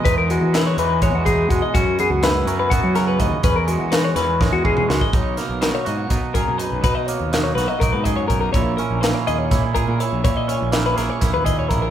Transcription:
<<
  \new Staff \with { instrumentName = "Clean electric guitar" } { \time 7/8 \key e \lydian \tempo 4 = 124 b'16 ais'16 fis'8 b'16 cis''16 b'8 cis''16 fis'16 gis'8 fis'16 dis''16 | fis'8 gis'16 fis'16 b'8 ais'16 b'16 fis'8 ais'16 b'16 dis''8 | b'16 ais'16 fis'8 b'16 cis''16 b'8 cis''16 fis'16 gis'8 fis'16 dis''16 | cis''8 ais'8 b'16 cis''16 dis''16 cis''8 r16 ais'8 b'8 |
b'16 dis''16 cis''8 b'16 cis''16 b'16 dis''16 ais'16 b'16 dis''16 cis''16 ais'16 ais'16 | cis''8 ais'8 b'16 cis''16 dis''16 cis''8 r16 ais'8 cis''8 | cis''16 dis''16 cis''8 ais'16 b'16 ais'16 cis''16 ais'16 b'16 dis''16 cis''16 ais'16 ais'16 | }
  \new Staff \with { instrumentName = "Clean electric guitar" } { \time 7/8 \key e \lydian << { <gis dis'>8 gis8 e'16 fis'16 dis'8 gis8 dis'8 gis8 | cis'8 b8 e'8 cis'8 b8 cis'8 b8 | cis'8 gis8 fis'8 cis'8 gis8 cis'8 gis8 | dis'8 ais8 dis'8 fis'8 dis'8 gis'8 dis'8 |
dis'8 ais8 dis'8 fis'8 dis'8 gis'8 dis'8 | e'8 cis'8 e'8 gis'8 e'8 gis'8 e'8 | e'8 cis'8 e'8 gis'8 e'8 gis'8 e'8 | } \\ { <e, e>4. e4 b,4 | fis,4. fis4 cis4 | e,4. e4 b,4 | b,4 fis4. fis,4 |
b,4 fis4. fis,4 | ais,4 ais4. ais,4 | ais,4 ais4. ais,4 | } >> }
  \new Staff \with { instrumentName = "Fingered electric bass" } { \clef bass \time 7/8 \key e \lydian e,8. e8. e,8. e,8. e,16 r16 | fis,8 r16 cis,8. fis,8. fis8. dis,16 r16 | e,8. e8. e,8. e,8. cis,16 r16 | b,,8 r16 b,,8 r16 gis,8 b,8 r16 b,16 r16 b,,16 |
b,8. dis,8. b,,16 r16 b,,16 gis,8. b,,8 | ais,,8 r16 ais,,8 r16 dis,8 ais,8 r16 ais,16 r16 ais,,16 | ais,8. ais,,8. ais,,16 r16 ais,,16 dis,8. ais,,8 | }
  \new DrumStaff \with { instrumentName = "Drums" } \drummode { \time 7/8 <hh bd>8 hh8 <hh sn>8 hh8 <hh bd>8 <hh bd>8 <hh bd>8 | <hh bd>8 hh8 <hh sn>8 hh8 <hh bd>8 <hh sn>8 <hh bd>8 | <hh bd>8 hh8 <hh sn>8 <hh sn>8 <bd sn>8 bd16 toml16 sn16 bd16 | <hh bd>8 <hh sn>8 <hh sn>8 hh8 <hh bd>8 <hh bd>8 hh8 |
<hh bd>8 hh8 <hh sn>8 <hh sn>8 <hh bd>8 <hh bd>8 <hh bd>8 | <hh bd>8 hh8 <hh sn>8 hh8 <hh bd sn>8 <hh bd>8 hh8 | <hh bd>8 hh8 <hh sn>8 <hh sn>8 <hh bd sn>8 <hh bd>8 <hh bd>8 | }
>>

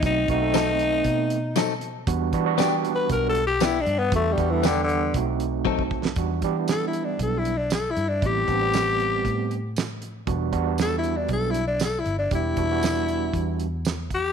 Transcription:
<<
  \new Staff \with { instrumentName = "Tenor saxophone" } { \time 4/4 \key e \minor \tempo 4 = 117 dis'8 dis'2. r8 | r4 \tuplet 3/2 { r4 b'8 ais'8 a'8 g'8 e'8 d'8 b8 } | \tuplet 3/2 { a8 g8 e8 d8 d4 } r2 | r4 \tuplet 3/2 { a'8 e'8 d'8 a'8 e'8 d'8 a'8 e'8 d'8 } |
g'2. r4 | r4 \tuplet 3/2 { a'8 e'8 d'8 a'8 e'8 d'8 a'8 e'8 d'8 } | e'2. r8 g'8 | }
  \new Staff \with { instrumentName = "Clean electric guitar" } { \time 4/4 \key e \minor r4 <fis c' dis' a'>8 r4. <fis c' dis' a'>8 r8 | r4 <b d' g'>8 r4. <b d' g'>8 r8 | r4 <b d' g'>8 r4. <fis c' dis' a'>8 r8 | r1 |
r1 | r1 | r1 | }
  \new Staff \with { instrumentName = "Tine electric piano" } { \time 4/4 \key e \minor <a c' dis' fis'>8 <a c' dis' fis'>16 <a c' dis' a'>4.~ <a c' dis' a'>16 r4. | <g b d' fis'>8 <g b d' fis'>16 <g b d' fis'>4.~ <g b d' fis'>16 r4. | <g b d' fis'>8 <g b d' fis'>16 <g b d' a'>4~ <g b d' a'>16 <a c' dis' fis'>4.~ <a c' dis' fis'>16 r16 | <g b d' fis'>8 <g b d' g'>16 <g b d' e'>4.~ <g b d' e'>16 r4. |
<g b c' e'>8 <g b c' d'>16 <g b c' g'>4.~ <g b c' g'>16 r4. | <g b d' fis'>8 <g b d' fis'>16 <g b d' fis'>4.~ <g b d' fis'>16 r4. | <g b d' g'>8 <g b d' fis'>16 <g b d' fis'>4.~ <g b d' fis'>16 r4. | }
  \new Staff \with { instrumentName = "Fingered electric bass" } { \clef bass \time 4/4 \key e \minor b,,8 b,,4. b,2 | e,8 e4. b,,4. g,8 | e,8 e,4. b,,2 | e,8 e4. b,,4. g,8 |
a,,8 a,,4. a,2 | e,,8 e,4. b,,4. g,,8 | e,,8 e,,4. e,2 | }
  \new DrumStaff \with { instrumentName = "Drums" } \drummode { \time 4/4 <hh bd>8 <hh bd>8 <hh sn tamb>8 hh8 <hh bd>8 hh8 <hh sn tamb>8 hh8 | <hh bd>8 <hh bd>8 <hh sn tamb>8 hh8 <hh bd>8 hh8 <hh sn tamb>8 hh8 | <hh bd>8 <hh bd>8 <hh sn tamb>8 hh8 <hh bd>8 hh8 bd16 bd16 bd16 sn16 | <hh bd>8 <hh bd>8 <hh sn tamb>8 hh8 <hh bd>8 hh8 <hh sn tamb>8 hh8 |
<hh bd>8 <hh bd>8 <hh sn tamb>8 hh8 <hh bd>8 hh8 <hh sn tamb>8 hh8 | <hh bd>8 <hh bd>8 <hh sn tamb>8 hh8 <hh bd>8 hh8 <hh sn tamb>8 hh8 | <hh bd>8 <hh bd>8 <hh sn tamb>8 hh8 <hh bd>8 hh8 <hh sn tamb>8 <hh bd>8 | }
>>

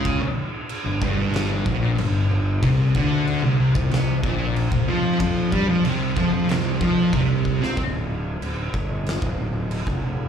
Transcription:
<<
  \new Staff \with { instrumentName = "Distorted electric guitar" } { \clef bass \time 4/4 \key d \minor \tempo 4 = 93 des16 r4 g,16 g,4 bes,8 g,8 g,8 | c8 d8. c16 c16 c16 c8 bes,8. c16 f8 | f8 g16 f16 c8 f16 f16 c8 f8 c8. c'16 | r1 | }
  \new Staff \with { instrumentName = "Distorted electric guitar" } { \clef bass \time 4/4 \key d \minor des16 r4 g,16 g,4 bes,8 g,8 g,8 | c8 d8. c16 c16 c16 c8 bes,8. c16 f8 | f8 g16 f16 c8 f16 f16 c8 f8 c8. c'16 | r1 | }
  \new Staff \with { instrumentName = "Fingered electric bass" } { \clef bass \time 4/4 \key d \minor des,16 r4 g,,16 g,,4 bes,,8 g,,8 g,,8 | c,8 d,8. c,16 c,16 c,16 c,8 bes,,8. c,16 f,8 | f,8 g,16 f,16 c,8 f,16 f,16 c,8 f,8 c,8. c16 | d,,4 d,,8 g,,8. d,,4 f,,8. | }
  \new DrumStaff \with { instrumentName = "Drums" } \drummode { \time 4/4 <cymc bd>4 cymc8 bd8 <cymc sn>8 bd8 cymc4 | <cymc bd>8 bd8 cymc8. bd16 <cymc sn>8 bd8 cymc16 bd8. | <cymc bd>8 bd8 cymc8 bd8 <cymc sn>8 bd8 <cymc bd>8 bd16 sn16 | <cymc bd>4 cymc8 bd8 <cymc sn>16 bd8. cymc16 bd8. | }
>>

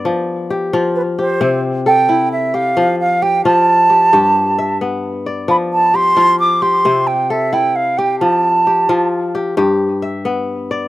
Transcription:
<<
  \new Staff \with { instrumentName = "Flute" } { \time 12/8 \key f \lydian \tempo 4. = 88 r2 b'8 c''4 r8 g''4 e''8 f''8~ | f''8 f''8 g''8 a''2. r4. | b''8 a''8 c'''4 d'''8 c'''4 g''8 e''8 g''8 f''8 g''8 | a''2 r1 | }
  \new Staff \with { instrumentName = "Kora" } { \time 12/8 \key f \lydian d''8 r8 g'8 f'4 g'8 c'4 a'4. g'8~ | g'8 r8 g'8 f'4 g'8 g'4 e''4. d''8~ | d''8 r8 g'8 f'4 g'8 c'4 a'4. g'8~ | g'8 r8 g'8 f'4 g'8 g'4 e''4. d''8 | }
  \new Staff \with { instrumentName = "Kora" } { \clef bass \time 12/8 \key f \lydian f4 r8 f4 r8 c4 r8 e'4 r8 | f4 r8 f4 r8 g,4 r8 b4 r8 | f4 r8 f4 r8 c4 r8 e'4 r8 | f4 r8 f4 r8 g,4 r8 b4 r8 | }
>>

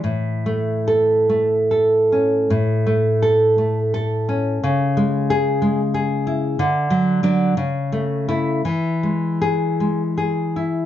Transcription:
\new Staff \with { instrumentName = "Nylon-string guitar" } { \time 6/8 \key a \major \tempo 4. = 56 << { r4 a'4 r4 | r4 a'4 r4 | r4 gis'4 r4 | r4 d'8 r4 e'8 |
r4 gis'4 r4 | } \\ { a,8 a4 a8 a'8 cis'8 | a,8 a4 a8 a'8 cis'8 | cis8 gis4 gis8 gis'8 e'8 | d8 fis8 fis8 cis8 a8 a8 |
e8 gis4 gis8 gis'8 e'8 | } >> }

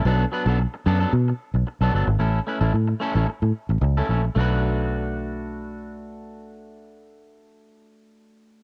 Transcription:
<<
  \new Staff \with { instrumentName = "Clean electric guitar" } { \time 4/4 \key b \minor \tempo 4 = 111 <fis b d' a'>16 r16 <fis b d' b'>16 <fis b d' a'>16 r8 <fis b d' a'>16 <fis b d' a'>16 r4 r16 <fis b d' a'>16 <fis b d' a'>16 r16 | <a cis' e' a'>16 r16 <a cis' e' b'>16 <a cis' e' a'>16 r8 <a cis' e' a'>16 <a cis' e' a'>16 r4 r16 <a cis' e' a'>16 <a cis' e' a'>16 r16 | <a d' fis' b'>1~ | <a d' fis' b'>1 | }
  \new Staff \with { instrumentName = "Fingered electric bass" } { \clef bass \time 4/4 \key b \minor b,,8 r16 b,,8 r16 fis,8 b,8 r16 b,,16 r16 b,,16 g,,16 gis,,16 | a,,8 r16 a,,16 a,8 r16 a,,16 r16 a,16 r16 a,,16 cis,8 ais,,8 | b,,1~ | b,,1 | }
>>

